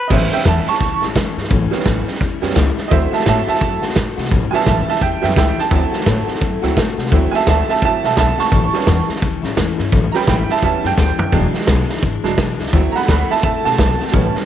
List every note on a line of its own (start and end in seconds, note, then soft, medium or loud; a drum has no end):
0.08 0.26 A1 loud
0.08 0.31 A2 medium
0.08 0.32 E3 medium
0.08 0.36 G3 medium
0.08 0.32 G3 medium
0.08 0.36 B3 medium
0.08 0.32 C#4 medium
0.08 0.37 C#4 medium
0.08 0.30 E4 medium
0.08 0.10 D#5 medium
0.08 kick loud
0.08 snare soft
0.08 crash loud
0.12 0.31 C5 medium
0.12 0.31 E5 medium
0.31 0.46 G3 soft
0.31 0.46 C#4 medium
0.31 0.45 E4 medium
0.31 0.45 E5 medium
0.31 0.46 G5 medium
0.31 snare soft
0.39 snare soft
0.45 0.61 E2 medium
0.45 0.67 A2 medium
0.45 0.67 E3 medium
0.45 0.68 G3 medium
0.45 0.66 C#4 medium
0.45 0.65 E4 medium
0.45 0.66 E5 medium
0.45 0.67 A5 medium
0.45 kick medium
0.45 snare loud
0.45 hi-hat pedal medium
0.66 0.79 G3 soft
0.66 0.80 E4 medium
0.66 1.00 A5 medium
0.66 1.02 C#6 loud
0.66 muted upright bass stroke medium
0.66 snare soft
0.74 snare soft
0.79 0.95 C#2 loud
0.79 1.01 E3 medium
0.79 1.02 G3 medium
0.79 1.02 C#4 medium
0.79 1.00 E4 medium
0.79 kick loud
0.79 snare soft
1.01 1.12 A1 medium
1.01 1.14 G3 soft
1.01 1.15 C#4 medium
1.01 1.15 E4 medium
1.01 snare soft
1.14 1.31 E2 loud
1.14 1.36 A2 medium
1.14 1.37 E3 medium
1.14 1.37 G3 medium
1.14 1.36 C#4 medium
1.14 1.35 E4 medium
1.14 kick medium
1.14 snare loud
1.14 hi-hat pedal medium
1.36 1.47 G2 loud
1.36 1.49 G3 medium
1.36 1.50 C#4 medium
1.36 1.50 E4 medium
1.36 snare soft
1.44 snare soft
1.49 1.66 A1 loud
1.49 1.71 A2 medium
1.49 1.72 E3 medium
1.49 1.72 G3 medium
1.49 1.71 C#4 medium
1.49 1.69 E4 medium
1.49 kick loud
1.49 snare soft
1.70 2.18 G3 medium
1.70 2.18 B3 medium
1.70 1.85 C#4 medium
1.70 2.19 C#4 medium
1.70 1.85 E4 medium
1.70 snare soft
1.79 snare soft
1.85 2.01 A1 medium
1.85 2.07 A2 medium
1.85 2.07 E3 medium
1.85 2.07 G3 loud
1.85 2.06 C#4 medium
1.85 2.05 E4 loud
1.85 kick medium
1.85 snare loud
1.85 hi-hat pedal medium
2.06 2.19 G3 medium
2.06 2.20 C#4 medium
2.06 2.20 E4 medium
2.06 muted upright bass stroke medium
2.06 snare soft
2.14 snare soft
2.18 2.36 E2 loud
2.18 2.41 E3 medium
2.18 2.42 G3 medium
2.18 2.41 C#4 medium
2.18 2.39 E4 medium
2.18 kick loud
2.18 snare soft
2.40 2.52 F#2 medium
2.40 2.55 G3 medium
2.40 2.54 G3 medium
2.40 2.55 B3 soft
2.40 2.54 C#4 medium
2.40 2.55 C#4 medium
2.40 2.55 E4 medium
2.40 snare soft
2.50 snare soft
2.54 2.71 C#2 loud
2.54 2.76 A2 medium
2.54 2.77 E3 medium
2.54 2.77 G3 medium
2.54 2.76 C#4 medium
2.54 2.74 E4 medium
2.54 kick medium
2.54 snare loud
2.54 hi-hat pedal loud
2.75 2.90 G3 medium
2.75 2.91 C#4 medium
2.75 2.90 E4 medium
2.75 muted upright bass stroke medium
2.75 snare soft
2.88 3.07 D2 loud
2.88 3.12 D3 medium
2.88 4.27 F#3 medium
2.88 3.12 A3 medium
2.88 4.27 C4 medium
2.88 3.12 C4 medium
2.88 4.27 E4 medium
2.88 3.11 C5 medium
2.88 2.91 D#5 medium
2.88 kick loud
2.88 snare soft
2.92 3.10 F#4 medium
2.92 3.11 E5 medium
3.11 3.25 A3 soft
3.11 3.26 C4 medium
3.11 3.26 F#4 medium
3.11 3.26 E5 medium
3.11 3.26 A5 medium
3.11 muted upright bass stroke medium
3.11 snare soft
3.19 snare soft
3.25 3.41 A2 loud
3.25 3.47 D3 medium
3.25 3.48 A3 medium
3.25 3.47 C4 loud
3.25 3.46 F#4 medium
3.25 3.47 E5 medium
3.25 3.48 A5 medium
3.25 kick medium
3.25 snare loud
3.25 hi-hat pedal medium
3.47 3.60 A3 soft
3.47 3.62 C4 medium
3.47 3.61 F#4 medium
3.47 3.81 E5 medium
3.47 3.82 A5 medium
3.47 muted upright bass stroke medium
3.47 snare soft
3.54 snare soft
3.61 3.77 F#2 loud
3.61 3.82 D3 medium
3.61 3.83 A3 medium
3.61 3.82 C4 medium
3.61 3.80 F#4 medium
3.61 kick loud
3.61 snare soft
3.82 3.93 D2 medium
3.82 3.95 A3 soft
3.82 3.96 C4 medium
3.82 3.96 F#4 medium
3.82 snare soft
3.89 snare soft
3.95 4.11 A2 medium
3.95 4.17 D3 medium
3.95 4.18 A3 medium
3.95 4.18 C4 medium
3.95 4.16 F#4 loud
3.95 kick loud
3.95 snare loud
3.95 hi-hat pedal loud
4.17 4.27 C3 loud
4.17 4.31 A3 soft
4.17 4.31 C4 medium
4.17 4.31 F#4 medium
4.17 snare soft
4.25 snare soft
4.30 4.47 A1 medium
4.30 4.52 A2 medium
4.30 4.52 E3 medium
4.30 4.53 G3 medium
4.30 4.51 C#4 medium
4.30 4.49 E4 medium
4.30 kick loud
4.30 snare soft
4.51 4.74 G3 medium
4.51 4.66 G3 soft
4.51 4.74 B3 medium
4.51 4.66 C#4 medium
4.51 4.75 C#4 medium
4.51 4.65 E4 medium
4.51 4.66 E5 medium
4.51 4.53 G#5 medium
4.51 muted upright bass stroke medium
4.51 snare soft
4.55 4.67 A5 loud
4.60 snare soft
4.65 4.81 A1 medium
4.65 4.87 A2 medium
4.65 4.87 E3 medium
4.65 4.88 G3 medium
4.65 4.87 C#4 medium
4.65 4.85 E4 medium
4.65 4.87 E5 medium
4.65 4.88 A5 medium
4.65 kick loud
4.65 snare loud
4.65 hi-hat pedal medium
4.86 5.01 G3 soft
4.86 5.02 C#4 soft
4.86 5.01 E4 medium
4.86 5.00 E5 medium
4.86 5.02 A5 medium
4.86 muted upright bass stroke medium
4.86 snare soft
4.95 snare soft
5.01 5.16 E2 medium
5.01 5.23 E3 medium
5.01 5.23 G3 medium
5.01 5.22 C#4 medium
5.01 5.20 E4 medium
5.01 5.22 E5 medium
5.01 5.22 G5 medium
5.01 kick loud
5.01 snare soft
5.21 5.33 F#2 loud
5.21 5.35 G3 medium
5.21 5.35 B3 medium
5.21 5.35 C#4 medium
5.21 5.36 E4 medium
5.21 5.36 E5 medium
5.21 5.36 G5 medium
5.21 snare soft
5.25 5.35 G3 soft
5.30 snare soft
5.35 5.52 C#2 loud
5.35 5.57 A2 medium
5.35 5.58 E3 medium
5.35 5.58 G3 medium
5.35 5.56 C#4 medium
5.35 5.54 E4 medium
5.35 5.57 E5 medium
5.35 5.58 G5 medium
5.35 kick medium
5.35 snare loud
5.35 hi-hat pedal medium
5.55 5.71 G3 soft
5.55 5.71 C#4 soft
5.55 5.70 E4 medium
5.55 muted upright bass stroke medium
5.55 snare soft
5.60 6.27 A5 medium
5.70 5.86 D2 loud
5.70 5.92 D3 medium
5.70 6.62 F#3 medium
5.70 5.93 A3 medium
5.70 6.62 C4 medium
5.70 5.92 C4 medium
5.70 6.62 E4 medium
5.70 5.90 F#4 medium
5.70 kick loud
5.70 snare soft
5.91 6.05 A3 soft
5.91 6.06 C4 medium
5.91 6.06 F#4 medium
5.91 muted upright bass stroke medium
5.91 snare soft
6.00 snare soft
6.05 6.22 A2 medium
6.05 6.27 D3 medium
6.05 6.28 A3 loud
6.05 6.27 C4 loud
6.05 6.25 F#4 loud
6.05 kick medium
6.05 snare loud
6.05 hi-hat pedal medium
6.26 6.40 A3 soft
6.26 6.41 C4 medium
6.26 6.41 F#4 medium
6.26 muted upright bass stroke medium
6.26 snare soft
6.35 snare soft
6.40 6.57 F#2 loud
6.40 6.62 D3 medium
6.40 6.63 A3 medium
6.40 6.62 C4 medium
6.40 6.60 F#4 medium
6.40 kick loud
6.40 snare soft
6.62 6.73 D2 loud
6.62 6.76 F#3 medium
6.62 6.76 A3 medium
6.62 6.77 C4 medium
6.62 6.76 C4 medium
6.62 6.76 E4 medium
6.62 6.76 F#4 medium
6.62 snare soft
6.76 6.98 D3 medium
6.76 6.98 A3 medium
6.76 6.98 C4 medium
6.76 6.96 F#4 medium
6.76 kick medium
6.76 snare loud
6.76 hi-hat pedal medium
6.98 7.07 C3 loud
6.98 7.10 A3 medium
6.98 7.11 C4 medium
6.98 7.12 F#4 medium
6.98 snare soft
7.05 snare soft
7.10 7.27 D2 loud
7.10 7.33 D3 medium
7.10 7.66 F#3 medium
7.10 7.33 A3 medium
7.10 7.33 C4 loud
7.10 7.66 C4 medium
7.10 7.66 E4 medium
7.10 7.31 F#4 medium
7.10 kick loud
7.10 snare soft
7.31 7.47 C4 medium
7.31 7.46 F#4 medium
7.31 7.47 E5 medium
7.31 7.33 G#5 medium
7.31 muted upright bass stroke medium
7.31 snare soft
7.35 7.46 A3 soft
7.35 7.48 A5 loud
7.40 snare soft
7.47 7.62 D2 loud
7.47 7.68 D3 medium
7.47 7.69 A3 medium
7.47 7.68 C4 medium
7.47 7.66 F#4 medium
7.47 7.68 E5 medium
7.47 7.69 A5 medium
7.47 kick medium
7.47 snare loud
7.47 hi-hat pedal loud
7.67 7.81 A3 soft
7.67 7.82 C4 medium
7.67 7.82 F#4 medium
7.67 7.82 E5 medium
7.67 7.83 A5 medium
7.67 muted upright bass stroke medium
7.67 snare soft
7.75 snare soft
7.81 7.97 A2 medium
7.81 8.03 D3 medium
7.81 8.02 F#3 medium
7.81 8.04 A3 medium
7.81 8.02 C4 soft
7.81 8.03 C4 medium
7.81 8.02 E4 medium
7.81 8.01 F#4 medium
7.81 8.03 E5 medium
7.81 8.04 A5 loud
7.81 kick loud
7.81 snare soft
8.02 8.13 B2 medium
8.02 8.17 A3 soft
8.02 8.18 C4 soft
8.02 8.17 F#4 medium
8.02 8.17 E5 medium
8.02 8.17 A5 loud
8.02 snare soft
8.11 snare soft
8.17 8.32 B1 loud
8.17 8.39 D3 medium
8.17 8.39 A3 medium
8.17 8.39 C4 medium
8.17 8.36 F#4 medium
8.17 8.38 E5 medium
8.17 8.38 A5 loud
8.17 kick loud
8.17 snare loud
8.17 hi-hat pedal loud
8.38 8.52 A3 soft
8.38 8.53 C4 medium
8.38 8.52 F#4 medium
8.38 9.05 A5 medium
8.38 9.07 C#6 loud
8.38 snare soft
8.45 snare soft
8.51 8.67 A1 loud
8.51 8.73 A2 medium
8.51 8.74 E3 medium
8.51 8.74 G3 medium
8.51 8.73 C#4 medium
8.51 8.71 E4 medium
8.51 kick loud
8.51 snare soft
8.72 8.95 G3 medium
8.72 8.87 G3 soft
8.72 8.95 B3 medium
8.72 8.87 C#4 soft
8.72 8.95 C#4 medium
8.72 8.87 E4 medium
8.72 muted upright bass stroke medium
8.72 snare soft
8.80 snare soft
8.86 9.02 E2 loud
8.86 9.08 A2 loud
8.86 9.09 E3 medium
8.86 9.09 G3 loud
8.86 9.09 C#4 loud
8.86 9.07 E4 loud
8.86 kick medium
8.86 snare loud
8.86 hi-hat pedal medium
9.08 9.20 G3 medium
9.08 9.21 C#4 medium
9.08 9.22 E4 medium
9.08 muted upright bass stroke medium
9.08 snare soft
9.15 snare soft
9.20 9.37 C#2 medium
9.20 9.43 E3 medium
9.20 9.43 G3 medium
9.20 9.43 C#4 medium
9.20 9.41 E4 medium
9.20 kick loud
9.20 snare soft
9.42 9.53 A1 loud
9.42 9.56 G3 medium
9.42 9.56 C#4 medium
9.42 9.57 E4 medium
9.42 snare soft
9.56 9.73 E2 loud
9.56 9.78 A2 medium
9.56 9.79 E3 medium
9.56 9.79 G3 medium
9.56 9.78 C#4 medium
9.56 9.75 E4 medium
9.56 kick loud
9.56 snare loud
9.56 hi-hat pedal loud
9.77 9.89 G2 loud
9.77 9.91 G3 medium
9.77 9.92 C#4 medium
9.77 9.92 E4 medium
9.77 snare soft
9.91 10.08 A1 loud
9.91 10.13 A2 medium
9.91 10.14 E3 medium
9.91 10.14 G3 loud
9.91 10.12 C#4 medium
9.91 10.10 E4 medium
9.91 kick loud
9.91 snare soft
10.11 10.36 G3 medium
10.11 10.36 B3 medium
10.11 10.27 C#4 medium
10.11 10.27 E4 medium
10.11 10.14 A#5 medium
10.11 muted upright bass stroke medium
10.11 snare soft
10.16 10.36 C#4 medium
10.16 10.28 G5 medium
10.16 10.28 B5 loud
10.21 snare soft
10.26 10.43 A1 medium
10.26 10.48 A2 medium
10.26 10.49 E3 medium
10.26 10.49 G3 medium
10.26 10.47 C#4 medium
10.26 10.45 E4 loud
10.26 10.49 G5 medium
10.26 10.50 B5 medium
10.26 kick medium
10.26 snare loud
10.26 hi-hat pedal medium
10.46 10.61 G3 soft
10.46 10.62 C#4 medium
10.46 10.61 E4 medium
10.46 muted upright bass stroke medium
10.46 snare soft
10.51 10.63 E5 medium
10.51 10.63 A5 medium
10.56 snare soft
10.61 10.78 E2 loud
10.61 10.83 E3 medium
10.61 10.84 G3 medium
10.61 10.82 G3 soft
10.61 10.82 B3 soft
10.61 10.84 C#4 medium
10.61 10.83 C#4 medium
10.61 10.81 E4 medium
10.61 10.84 E5 medium
10.61 10.85 A5 medium
10.61 kick loud
10.61 snare soft
10.83 10.94 F#2 loud
10.83 10.96 G3 soft
10.83 10.97 C#4 medium
10.83 10.97 E4 medium
10.83 snare soft
10.87 11.33 G5 loud
10.96 11.13 D2 loud
10.96 11.19 A2 medium
10.96 11.19 E3 medium
10.96 11.19 G3 medium
10.96 11.18 C#4 medium
10.96 11.17 E4 medium
10.96 kick loud
10.96 snare medium
10.96 hi-hat pedal loud
11.18 11.34 G3 soft
11.18 11.33 C#4 medium
11.18 11.33 E4 medium
11.18 muted upright bass stroke medium
11.18 floor tom loud
11.32 11.48 E1 loud
11.32 11.54 E2 medium
11.32 11.54 B2 medium
11.32 11.55 E3 medium
11.32 11.86 F#3 medium
11.32 11.87 G#3 soft
11.32 11.55 G#3 medium
11.32 11.87 D4 medium
11.32 11.54 D4 loud
11.32 11.53 E4 medium
11.32 kick loud
11.32 snare soft
11.54 11.67 E3 medium
11.54 11.68 G#3 medium
11.54 11.68 D4 medium
11.54 11.68 E4 medium
11.54 snare soft
11.61 snare soft
11.67 11.83 B1 medium
11.67 11.89 E2 loud
11.67 11.90 B2 medium
11.67 11.90 E3 medium
11.67 11.90 G#3 loud
11.67 11.89 D4 loud
11.67 11.88 E4 loud
11.67 kick medium
11.67 snare loud
11.67 hi-hat pedal medium
11.89 12.03 G#3 medium
11.89 12.04 D4 medium
11.89 12.03 E4 medium
11.89 snare soft
11.93 12.02 E3 medium
11.93 snare soft
12.02 12.18 G#1 loud
12.02 12.25 E3 medium
12.02 12.25 G#3 medium
12.02 12.25 D4 medium
12.02 kick loud
12.02 snare soft
12.06 12.23 E4 medium
12.24 12.34 E1 loud
12.24 12.37 F#3 medium
12.24 12.37 G#3 soft
12.24 12.40 G#3 medium
12.24 12.37 D4 medium
12.24 12.39 D4 medium
12.24 12.38 E4 medium
12.24 snare soft
12.28 12.39 E3 medium
12.38 12.53 B1 loud
12.38 12.60 E2 medium
12.38 12.60 B2 medium
12.38 12.61 E3 medium
12.38 12.61 G#3 loud
12.38 12.60 D4 medium
12.38 12.59 E4 loud
12.38 kick loud
12.38 snare loud
12.38 hi-hat pedal loud
12.59 12.69 C#2 medium
12.59 12.75 D4 medium
12.59 12.74 E4 medium
12.59 snare soft
12.63 12.73 E3 medium
12.63 12.74 G#3 medium
12.63 snare soft
12.73 12.88 D2 loud
12.73 12.95 D3 medium
12.73 14.10 F#3 medium
12.73 12.95 A3 medium
12.73 14.10 C4 medium
12.73 12.95 C4 loud
12.73 14.10 E4 medium
12.73 12.93 F#4 loud
12.73 kick loud
12.73 snare soft
12.92 13.08 C4 soft
12.92 13.08 F#4 medium
12.92 13.08 F#5 medium
12.92 12.94 A#5 medium
12.92 muted upright bass stroke medium
12.92 snare soft
12.96 13.07 A3 soft
12.96 13.08 B5 loud
13.02 snare soft
13.07 13.24 D2 medium
13.07 13.29 D3 medium
13.07 13.30 A3 medium
13.07 13.29 C4 loud
13.07 13.28 F#4 medium
13.07 13.29 F#5 medium
13.07 13.30 B5 loud
13.07 kick medium
13.07 snare loud
13.07 hi-hat pedal loud
13.29 13.43 A3 soft
13.29 13.44 C4 medium
13.29 13.43 F#4 medium
13.29 13.42 E5 medium
13.29 13.43 A5 loud
13.29 muted upright bass stroke medium
13.29 snare soft
13.37 snare soft
13.43 13.59 A2 loud
13.43 13.65 D3 medium
13.43 13.66 A3 medium
13.43 13.64 C4 medium
13.43 13.62 F#4 medium
13.43 13.64 E5 medium
13.43 13.64 A5 medium
13.43 kick loud
13.43 snare soft
13.64 13.74 B2 loud
13.64 13.77 A3 soft
13.64 13.77 C4 medium
13.64 13.78 F#4 medium
13.64 14.33 A5 loud
13.64 snare soft
13.72 snare soft
13.77 13.94 B1 loud
13.77 13.99 D3 medium
13.77 14.00 A3 medium
13.77 13.99 C4 medium
13.77 13.96 F#4 loud
13.77 kick loud
13.77 snare loud
13.77 hi-hat pedal medium
13.98 14.14 A3 medium
13.98 14.14 C4 medium
13.98 14.13 F#4 medium
13.98 muted upright bass stroke medium
13.98 snare soft
14.07 snare soft
14.12 14.29 A1 loud
14.12 14.35 A2 medium
14.12 14.35 E3 medium
14.12 14.45 G3 medium
14.12 14.36 G3 loud
14.12 14.45 B3 medium
14.12 14.45 C#4 medium
14.12 14.35 C#4 loud
14.12 14.33 E4 medium
14.12 kick loud
14.12 snare soft
14.34 14.45 G3 soft
14.34 14.45 C#4 medium
14.34 14.45 E4 medium
14.34 muted upright bass stroke medium
14.34 snare soft